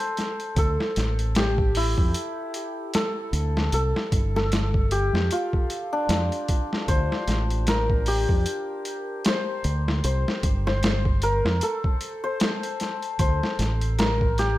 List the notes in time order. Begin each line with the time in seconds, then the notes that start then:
Already playing: A4 C5
0.00 closed hi-hat
0.17 snare, closed hi-hat
0.40 closed hi-hat
0.56 D2 A4, kick, closed hi-hat
0.80 snare
0.96 A1, snare, closed hi-hat
1.19 closed hi-hat
1.35 G4, snare, closed hi-hat
1.58 kick
1.75 E4, open hi-hat
1.98 F2, kick
2.14 closed hi-hat
2.54 closed hi-hat
2.94 A4, snare, closed hi-hat
3.33 D2, closed hi-hat
3.57 snare
3.72 C2 A4, closed hi-hat
3.96 snare
4.12 G1, kick, closed hi-hat
4.36 A4, snare
4.52 snare, closed hi-hat
4.74 kick
4.91 G4, closed hi-hat
5.13 F2, snare
5.31 F4, closed hi-hat
5.53 kick
5.70 closed hi-hat
5.93 D4
6.09 F2, snare, closed hi-hat
6.32 closed hi-hat
6.48 kick, closed hi-hat
6.73 snare
6.88 D2 C5, kick, closed hi-hat
7.12 snare
7.27 A1, snare, closed hi-hat
7.50 closed hi-hat
7.67 A#4, snare, closed hi-hat
7.90 kick
8.06 G4, open hi-hat
8.29 F2, kick
8.46 closed hi-hat
8.85 closed hi-hat
9.25 C5, snare, closed hi-hat
9.64 D2, closed hi-hat
9.88 snare
10.04 C2 C5, closed hi-hat
10.28 snare
10.43 G1, kick, closed hi-hat
10.67 C5, snare
10.83 snare, closed hi-hat
11.05 kick
11.22 A#4, closed hi-hat
11.45 F2, snare
11.61 A4, closed hi-hat
11.84 kick
12.01 closed hi-hat
12.24 C5
12.40 snare, closed hi-hat
12.63 closed hi-hat
12.80 snare, closed hi-hat
13.02 closed hi-hat
13.19 D2 C5, kick, closed hi-hat
13.43 snare
13.59 A1, snare, closed hi-hat
13.81 closed hi-hat
13.99 A#4, snare, closed hi-hat
14.21 kick
14.38 G4, snare, closed hi-hat